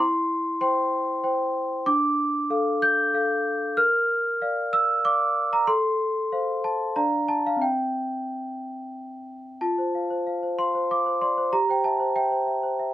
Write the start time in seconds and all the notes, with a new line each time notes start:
Already playing: C6
0.00 E4
0.61 C5 G5 C6
1.24 C5 G5
1.86 D4 D6
2.50 A4 F5
2.82 G6
3.14 A4 F5
3.77 A#4 F6
4.42 D5 F5
4.73 E6
5.05 D5 F5 D6
5.53 A#5
5.67 A4 C6
6.32 C5 F5
6.64 A5
6.96 D4 D5 F5 A#5
7.28 A5
7.47 F5
7.57 C4 E5
7.62 G5
9.61 F4 A5
9.78 C5
9.95 F5
10.11 C5
10.27 F5
10.43 C5
10.59 F5 C6
10.75 C5
10.91 F5 D6
11.06 C5
11.21 D5 C6
11.38 C5
11.53 G4 A#5
11.69 C5 G5
11.84 E5 A5
12.00 C5
12.16 E5 G5
12.32 C5
12.47 E5
12.63 C5
12.79 E5